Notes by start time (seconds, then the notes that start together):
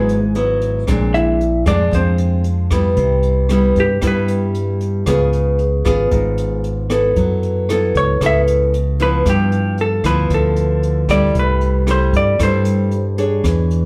Already playing: G#1 G#2 F#3 G#3 B3 E4 G#4
0.09 closed hi-hat
0.35 F#3 B3 E4, closed hi-hat
0.61 closed hi-hat
0.87 A#1 A#2 G#3 C4 D4, kick, cross-stick, closed hi-hat
1.14 E4 E5, closed hi-hat
1.41 closed hi-hat
1.66 F2 G#3 C4 D4 D5, kick, cross-stick, closed hi-hat
1.91 F2 F3 C5, kick, closed hi-hat
1.96 C4
2.18 closed hi-hat
2.44 closed hi-hat
2.71 G3 B3 E4, kick, cross-stick, closed hi-hat
2.96 C2 C3, kick, closed hi-hat
3.22 closed hi-hat
3.49 G3 B3 E4, cross-stick, closed hi-hat
3.76 G2, kick, closed hi-hat
3.80 G4
4.01 G2 G3 B3 E4, kick, cross-stick, closed hi-hat
4.07 B4
4.28 closed hi-hat
4.54 closed hi-hat
4.80 closed hi-hat
5.06 C#2 C#3 B3 F4 G#4, kick, cross-stick, closed hi-hat
5.33 closed hi-hat
5.59 closed hi-hat
5.85 G#1 B3 F4 G#4, kick, cross-stick, closed hi-hat
6.11 G#1 G#2, kick, closed hi-hat
6.38 closed hi-hat
6.64 closed hi-hat
6.90 B3 E4 A4, cross-stick, closed hi-hat
7.16 F#2 F#3, kick, closed hi-hat
7.43 closed hi-hat
7.69 B3 E4 A4, cross-stick, closed hi-hat
7.95 C#2 C#5, kick, closed hi-hat
8.21 C#2 C#3 B3 E4 A4, kick, cross-stick, closed hi-hat
8.26 E5
8.47 closed hi-hat
8.74 closed hi-hat
9.00 F3 B3 E4 B4, closed hi-hat
9.25 G2, kick, cross-stick, closed hi-hat
9.30 G4
9.52 closed hi-hat
9.78 A4, closed hi-hat
10.04 D2 F3 B3 E4 B4, kick, cross-stick, closed hi-hat
10.30 D2 D3, kick, closed hi-hat
10.34 A4
10.56 closed hi-hat
10.83 closed hi-hat
11.09 G3 A3 E4 D5, kick, cross-stick, closed hi-hat
11.34 C2 C3, kick, closed hi-hat
11.39 B4
11.61 closed hi-hat
11.87 G3 A3 E4, cross-stick, closed hi-hat
11.91 C5
12.13 G2 D5, kick, closed hi-hat
12.39 G2 G3 A3 E4 C5, kick, cross-stick, closed hi-hat
12.65 closed hi-hat
12.91 closed hi-hat
13.18 D4 G#4 C#5, closed hi-hat
13.44 E2 E3, kick, cross-stick, closed hi-hat
13.71 closed hi-hat